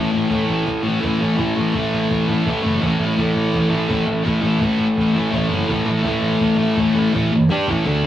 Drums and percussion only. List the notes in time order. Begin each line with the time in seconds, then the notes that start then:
0.30 cajon bass, cajon slap
0.67 cajon bass, cajon slap
1.03 cajon bass, cajon slap
1.39 cajon bass, cajon slap
1.74 cajon bass, cajon slap
2.11 cajon bass, cajon slap
2.47 cajon bass, cajon slap
2.82 cajon bass, cajon slap
3.18 cajon bass, cajon slap
3.54 cajon bass, cajon slap
3.90 cajon bass, cajon slap
4.26 cajon bass, cajon slap
4.62 cajon bass, cajon slap
4.97 cajon bass, cajon slap
5.33 cajon bass, cajon slap
5.69 cajon bass, cajon slap
6.05 cajon bass, cajon slap
6.41 cajon bass, cajon slap
6.78 cajon bass, cajon slap
6.96 cajon slap
7.13 cajon bass, cajon slap
7.49 cajon slap
7.68 cajon bass
7.86 cajon slap